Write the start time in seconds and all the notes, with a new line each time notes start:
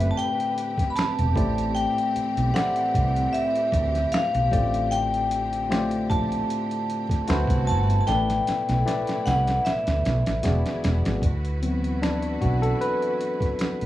Already playing: F#1 A2 D3 A3 C4 G4 B4 D5 E5
0.00 closed hi-hat
0.11 A5
0.17 G5, closed hi-hat
0.40 closed hi-hat
0.58 closed hi-hat
0.78 kick, snare, closed hi-hat
0.90 B5
0.96 A5, finger snap, snare, closed hi-hat
1.19 E1, closed hi-hat
1.35 A1 A2 E3 A3 E4 G4 C5 D5, kick, closed hi-hat
1.58 closed hi-hat
1.75 G5, closed hi-hat
1.98 closed hi-hat
2.16 muted fretless electric bass stroke, closed hi-hat
2.37 B1, closed hi-hat
2.54 A2 A3 E4 G4 C5 D5 F#5, finger snap, snare, closed hi-hat
2.76 closed hi-hat
2.94 C2, kick, closed hi-hat
3.16 closed hi-hat
3.33 E5, closed hi-hat
3.56 closed hi-hat
3.72 D2, kick, closed hi-hat
3.95 snare, closed hi-hat
4.12 F5, finger snap, snare, closed hi-hat
4.35 B1, closed hi-hat
4.51 A1 A2 D3 A3 F4 G4 C5 D5, kick, closed hi-hat
4.74 closed hi-hat
4.91 G5, closed hi-hat
5.14 closed hi-hat
5.31 closed hi-hat
5.53 closed hi-hat
5.70 A2 A3 F4 G4 C5 D5, finger snap, snare, closed hi-hat
5.91 closed hi-hat
6.10 A#1 A5, kick, closed hi-hat
6.32 closed hi-hat
6.50 closed hi-hat
6.71 closed hi-hat
6.90 closed hi-hat
7.09 kick, snare, closed hi-hat
7.28 D2 B2 C3 D3 A3 E4 F#4 B4 C5, finger snap, snare, closed hi-hat
7.47 C2, kick, closed hi-hat
7.67 G1 A5, closed hi-hat
7.90 closed hi-hat
8.01 A5
8.06 A1 A2 B2 A3 E4 A#4 D5 G5, snare, closed hi-hat
8.14 B4
8.30 snare, closed hi-hat
8.47 muted fretless electric bass stroke, snare, closed hi-hat
8.69 B1, snare, closed hi-hat
8.85 A2 A3 E4 B4 D5, snare, closed hi-hat
9.07 snare, closed hi-hat
9.26 C2 F#5, snare, closed hi-hat
9.47 snare, closed hi-hat
9.65 E5, snare, closed hi-hat
9.87 D2, snare, closed hi-hat
10.05 B1, snare, closed hi-hat
10.26 A1, snare, closed hi-hat
10.43 E1 D3 E3 G#3 B3 E4 F#4 G#4 D5, snare, closed hi-hat
10.66 snare, closed hi-hat
10.84 E1, snare, closed hi-hat
11.05 G#1, snare, closed hi-hat
11.22 D2 D3 E4 F#4 B4, kick, closed hi-hat
11.45 closed hi-hat
11.62 E3 F#3 B3 C4, closed hi-hat
11.84 closed hi-hat
12.02 D4, finger snap, snare, closed hi-hat
12.22 closed hi-hat
12.41 B1 F#4, kick, closed hi-hat
12.62 A4, closed hi-hat
12.81 B4, closed hi-hat
13.02 closed hi-hat
13.21 closed hi-hat
13.40 kick, snare, closed hi-hat
13.59 finger snap, snare, closed hi-hat
13.81 A1, closed hi-hat